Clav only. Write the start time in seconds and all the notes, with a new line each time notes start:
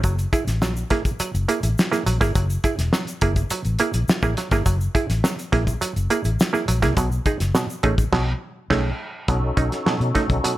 0.04 F#3
0.33 E4 G#4
0.62 F#3
0.91 A#3 E4 G#4
1.05 E4 G#4
1.20 F#3
1.48 A#3 E4 G#4
1.63 E4 G#4
1.92 A#3 E4 G#4
2.06 F#3
2.21 A#3 E4 G#4
2.35 F#3
2.64 E4 G#4
2.93 F#3
3.22 A#3 E4 G#4
3.36 E4 G#4
3.51 F#3
3.80 A#3 E4 G#4
3.95 E4 G#4
4.23 A#3 E4 G#4
4.38 F#3
4.52 A#3 E4 G#4
4.66 F#3
4.95 E4 G#4
5.24 F#3
5.52 A#3 E4 G#4
5.67 E4 G#4
5.81 F#3
6.10 A#3 E4 G#4
6.25 E4 G#4
6.53 A#3 E4 G#4
6.68 F#3
6.82 A#3 E4 G#4
6.97 B2 F#3
7.26 D#4 G#4
7.55 B2 F#3
7.83 A3 C#4 D#4 G#4
7.98 D#4 G#4
8.13 B2 F#3
8.70 A3 C#4 D#4 G#4
9.28 B2 F#3
9.57 C#4 D#4
9.86 B2 F#3
10.15 A3 C#4 D#4
10.30 C#4 D#4
10.44 B2 F#3